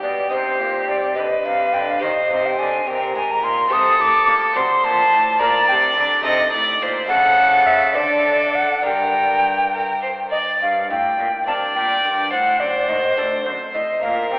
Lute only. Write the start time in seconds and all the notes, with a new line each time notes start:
Already playing: D4 B4
0.03 B2
0.29 C3 D#4 C5
0.60 A#2
0.88 C3
1.14 D3 G4 B4
1.45 C3
1.74 D3
1.99 D#3 G4 C5
2.31 C3
2.59 D3
2.87 C3
3.15 G#2
3.43 A#2
3.68 A3 G4 C5
3.72 C3
4.00 A2
4.29 A#2
4.53 A3 F#4 D5
4.57 C3
4.85 A#2
5.13 A2
5.39 A#2 D4 A#4
5.70 C3
5.98 D3
6.21 A3 D#4 A4
6.26 C3
6.54 A2
6.81 A#2
7.06 C#3 E4 A4
7.93 D3 D4 C5
8.82 G2 D4 A#4
10.62 G2
10.91 A2
11.19 A#2
11.47 C3 D4 A#4
11.76 A#2
12.05 G2
12.33 A2
12.60 F#2
12.89 D#2
13.17 D2 C4 D4 A4
13.46 F#2
13.75 A2
14.03 A#2
14.31 C3